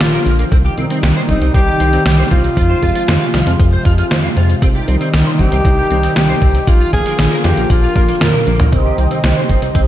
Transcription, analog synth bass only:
0.00 A#1
0.26 A#1
0.52 C2
0.77 C2
1.03 C2
1.29 G1
1.42 C2
1.54 C2
1.80 C2
2.06 C2
2.31 C2
2.57 F2
2.83 F2
3.08 F2
3.34 C2
3.47 F2
3.60 F2
3.85 F2
4.11 F2
4.37 F2
4.62 C2
4.88 C2
5.14 C2
5.39 G1
5.52 C2
5.65 C2
5.91 C2
6.16 C2
6.42 C2
6.68 A#1
6.93 A#1
7.19 A#1
7.44 F2
7.57 A#1
7.70 A#1
7.96 A#1
8.21 F2
8.47 A#1
8.73 C2
8.98 C2
9.24 C2
9.49 G1
9.62 C2
9.75 C2

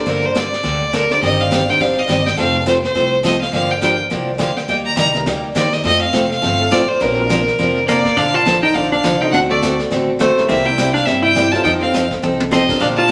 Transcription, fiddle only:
Already playing: D5
0.09 A#4
0.26 C5
0.36 D5
0.95 A#4
1.12 D5
1.23 D#5
1.41 F5
1.70 G5
1.81 F5
1.99 D#5
2.26 G5
2.38 F5
2.68 C5
2.84 C5
3.25 D#5
3.41 F5
3.53 F5
3.71 G5
3.83 G5
4.41 F5
4.57 G5
4.69 G5
4.86 A#5
4.98 A#5
5.57 D5
5.73 D#5
5.86 D#5
6.02 F5
6.31 F5
6.71 D5
6.88 C5
7.01 A#4
7.88 D5
8.18 F5
8.35 A5
8.63 G5
8.75 F5
8.92 F5
9.21 G5
9.32 F#5
9.50 D5
10.20 C5
10.48 E5
10.66 G5
10.94 F5
11.05 E5
11.22 G5
11.51 A5
11.63 G5
11.81 F5
12.52 D#5
12.80 F5
12.97 A5

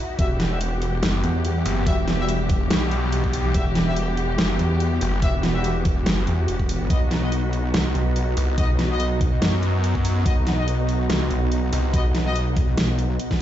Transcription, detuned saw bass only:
1.03 F#1
1.66 F#1
2.71 B1
4.38 F#1
5.01 F#1
6.06 F#1
7.74 C2
8.37 C2
9.42 F#2
11.10 C2
11.73 C2

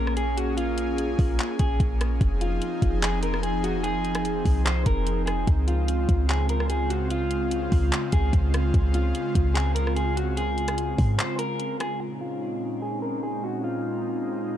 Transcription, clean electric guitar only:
Already playing: A#4
0.17 G#4
0.37 F#4
0.57 F4
1.60 G#4
2.41 F4
3.03 G#4
3.23 A#4
3.43 G#4
3.64 F#4
3.83 G#4
4.65 C5
4.86 A#4
5.26 G#4
5.68 F4
6.29 G#4
6.50 A#4
6.69 G#4
6.90 F#4
7.11 F4
8.13 G#4
8.95 F4
9.54 G#4
9.75 A#4
9.96 G#4
10.16 F#4
10.37 G#4
11.18 C5
11.39 A#4
11.80 G#4
12.21 F4
12.82 G#4
13.02 A#4
13.23 G#4
13.44 F#4
13.64 F4

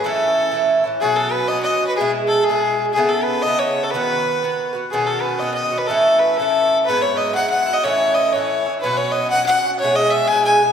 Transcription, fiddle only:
0.05 A4
1.00 G#4
1.16 A4
1.32 B4
1.48 D#5
1.63 D#5
1.87 B4
1.96 G#4
2.28 A4
2.44 G#4
2.93 G#4
3.09 A4
3.24 B4
3.42 D#5
3.59 C#5
3.83 A4
3.91 B4
4.91 G#4
5.07 A4
5.21 B4
5.39 D#5
5.54 D#5
5.78 B4
5.87 A4
6.19 B4
6.33 B4
6.37 A4
6.86 B4
7.01 C#5
7.17 D#5
7.35 F#5
7.50 F#5
7.74 D#5
7.84 C#5
8.14 D#5
8.32 C#5
8.81 B4
8.97 C#5
9.12 D#5
9.30 F#5
9.46 F#5
9.79 C#5
9.95 D#5
10.11 E5
10.28 G#5
10.45 G#5

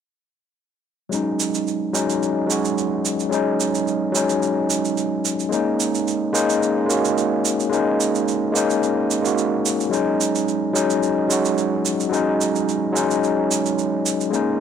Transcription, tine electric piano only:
1.09 F#3 G#3 C#4
1.14 D#4
1.93 F#3 G#3 C#4 D#4
2.46 F#3 G#3 C#4
2.52 F#4
3.29 F#3 G#3 C#4
3.34 D#4
4.12 F#3 G#3 C#4
4.17 D#4
5.49 G#3 A#3 C#4
5.54 D#4
6.33 G#3 A#3 C#4 D#4
6.86 G#3 A#3 C#4
6.91 F#4
7.69 G#3 A#3 C#4
7.74 D#4
8.52 G#3 A#3 C#4
8.57 D#4
9.21 G#3 A#3 C#4
9.26 F#4
9.89 F#3 G#3 C#4
9.94 D#4
10.73 F#3 G#3 C#4 D#4
11.27 F#3 G#3 C#4
11.32 F#4
12.09 F#3 G#3 C#4
12.14 D#4
12.92 F#3 G#3 C#4
12.97 D#4
14.31 G#3 A#3 C#4
14.35 D#4

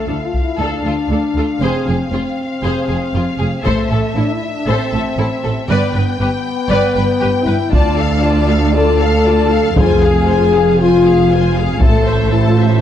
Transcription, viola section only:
0.08 A4
0.59 A4
0.84 A4
1.11 A4
1.37 A4
1.62 G#4
1.86 G#4
2.12 G#4
2.63 G#4
2.88 G#4
3.14 G#4
3.39 G#4
3.64 A4
3.91 A4
4.16 A4
4.68 A4
4.94 A4
5.19 A4
5.44 A4
5.69 B4
5.94 B4
6.20 B4
6.71 B4
6.95 B4
7.21 B4
7.46 B4
7.71 F4
7.97 A4
8.22 F4
8.49 A4
8.75 F4
9.00 A4
9.26 F4
9.50 A4
9.75 F4
10.03 G#4
10.28 F4
10.55 G#4
10.80 F4
11.06 G#4
11.31 F4
11.57 G#4
11.82 A4
12.06 C5
12.31 A4
12.58 C5

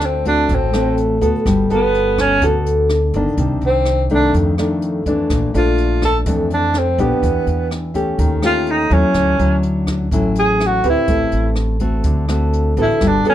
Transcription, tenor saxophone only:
0.06 C4
0.28 D4
0.55 C4
1.73 B3
2.21 C#4
3.66 C4
4.14 D4
5.57 F4
6.05 A4
6.54 D4
6.78 C4
7.00 B3
8.46 F4
8.71 D#4
8.93 C#4
10.39 G#4
10.66 F#4
10.89 E4
12.82 E4
13.07 D4
13.29 C#4

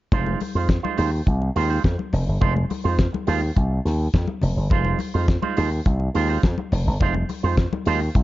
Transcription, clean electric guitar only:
0.12 G#3 D#4 F4 C5
0.55 G#3 D#4 F4 C5
0.83 G#3 D#4 F4 C5
0.97 G#3 D#4 F4 C5
1.12 muted clean electric guitar stroke
1.26 muted clean electric guitar stroke
1.41 muted clean electric guitar stroke
1.56 G#3 D#4 F4 C5
1.70 G#3 D#4 F4 C5
1.98 muted clean electric guitar stroke
2.27 muted clean electric guitar stroke
2.40 G#3 D#4 F4 C5
2.55 muted clean electric guitar stroke
2.70 muted clean electric guitar stroke
2.84 G#3 D#4 F4 C5
3.12 muted clean electric guitar stroke
3.27 G#3 D#4 F4 C5
3.42 muted clean electric guitar stroke
3.56 muted clean electric guitar stroke
3.71 muted clean electric guitar stroke
4.00 muted clean electric guitar stroke
4.14 muted clean electric guitar stroke
4.29 muted clean electric guitar stroke
4.58 muted clean electric guitar stroke
4.71 G#3 D#4 F4 C5
5.00 muted clean electric guitar stroke
5.14 G#3 D#4 F4 C5
5.28 muted clean electric guitar stroke
5.42 G#3 D#4 F4 C5
5.57 G#3 D#4 F4 C5
5.86 muted clean electric guitar stroke
6.00 muted clean electric guitar stroke
6.14 G#3 D#4 F4 C5
6.29 G#3 D#4 F4 C5
6.44 muted clean electric guitar stroke
6.59 muted clean electric guitar stroke
6.87 muted clean electric guitar stroke
7.01 G#3 D#4 F4 C5
7.15 muted clean electric guitar stroke
7.29 muted clean electric guitar stroke
7.43 G#3 D#4 F4 C5
7.72 muted clean electric guitar stroke
7.86 G#3 D#4 F4 C5
8.01 muted clean electric guitar stroke
8.15 muted clean electric guitar stroke

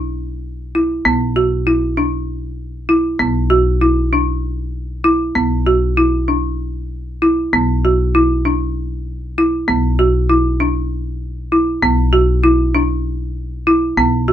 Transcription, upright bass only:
Already playing: B1
1.05 B1
3.20 B1
5.36 B1
7.53 B1
9.69 B1
11.82 B1
13.97 B1

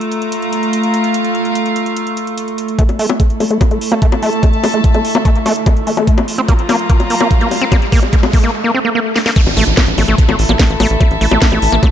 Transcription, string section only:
Already playing: F4 A#5
0.34 F5
2.79 E4
3.13 A4
3.86 E5
3.92 A5
6.07 F4
6.38 A#5
6.64 F5
9.36 E4
9.52 A4
10.03 E5
10.84 A5

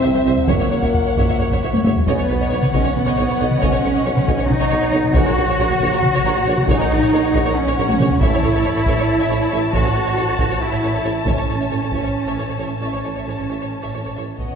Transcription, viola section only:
0.03 C5
0.14 C5
0.26 C5
0.48 C#5
0.60 C#5
0.72 C#5
0.83 C#5
1.06 C#5
1.17 C#5
1.29 C#5
1.39 C#5
1.52 C#5
1.63 C#5
1.74 C#5
1.86 C#5
2.08 C#5
2.18 C#5
2.29 C#5
2.41 C#5
2.53 C#5
2.62 C#5
2.73 C#5
2.84 C#5
3.06 C#5
3.17 C#5
3.29 C#5
3.40 C#5
3.61 C#5
3.71 C#5
3.83 C#5
3.94 C#5
4.05 C#5
4.17 C#5
4.28 C#5
4.39 C#5
4.60 C#5
4.70 C#5
4.81 C#5
4.92 C#5
5.14 C#5
5.25 C#5
5.37 C#5
5.48 C#5
5.60 C#5
5.70 C#5
5.82 C#5
5.93 C#5
6.16 C#5
6.26 C#5
6.36 C#5
6.47 C#5
6.70 C#5
6.80 C#5
6.91 C#5
7.03 C#5
7.14 C#5
7.25 C#5
7.36 C#5
7.46 C#5
7.68 C#5
7.79 C#5
7.90 C#5
8.01 C#5
8.22 C#5
8.33 C#5
8.43 C#5
8.54 C#5
8.65 C#5
8.77 C#5
8.87 C#5
8.99 C#5
9.19 C#5
9.29 C#5
9.40 C#5
9.50 C#5
9.73 C#5
9.84 C#5
9.95 C#5
10.05 C#5
10.15 C#5
10.27 C#5
10.38 C#5
10.50 C#5
10.71 C#5
10.83 C#5
10.94 C#5
11.04 C#5
11.26 C#5
11.38 C#5
11.49 C#5
11.60 C#5
11.71 C#5
11.82 C#5
11.94 C#5
12.04 C#5
12.27 C#5
12.38 C#5
12.48 C#5
12.60 C#5
12.81 C#5
12.93 C#5
13.05 C#5
13.15 C#5
13.27 C#5
13.38 C#5
13.50 C#5
13.61 C#5
13.82 C#5
13.94 C#5
14.05 C#5
14.17 C#5
14.39 C#5

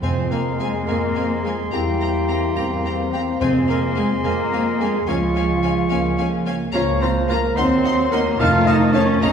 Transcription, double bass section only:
0.03 F2
0.88 F2
1.72 E2
2.57 E2
3.41 F2
4.24 F2
5.08 C#2
5.91 C#2
6.74 C#2
7.57 D#2
8.40 F2
9.22 A#1

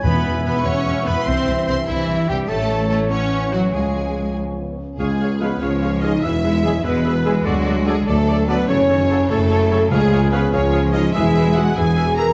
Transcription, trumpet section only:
0.04 E5
2.49 C#5
5.40 G#4
6.03 G#4
6.64 G#4
7.25 G#4
7.87 A4
8.48 A4
9.10 A4
9.71 A4
9.91 G#4
10.52 G#4
11.14 G#4
11.76 G#4

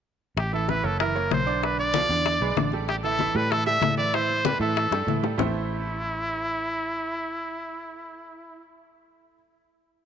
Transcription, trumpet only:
0.38 G4
0.54 A4
0.69 B4
0.85 A4
1.00 A#4
1.33 C5
1.64 B4
1.79 D5
2.89 G4
3.04 A4
3.36 B4
3.51 A4
3.66 E5
3.98 D5
4.14 C5
4.45 B4
4.61 A4
5.39 E4

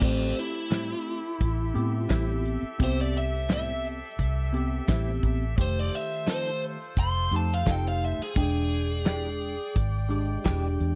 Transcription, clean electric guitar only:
0.71 A2 G3 C4 E4
2.09 A2 G3 C4 E4
3.49 A2 G3 C4 E4
4.88 A2 G3 C4 E4
6.27 F3 C4 D#4 A4
7.66 F3 C4 D#4 A4
9.05 E3 G#3 D4 G4
10.45 E3 G#3 D4 G4

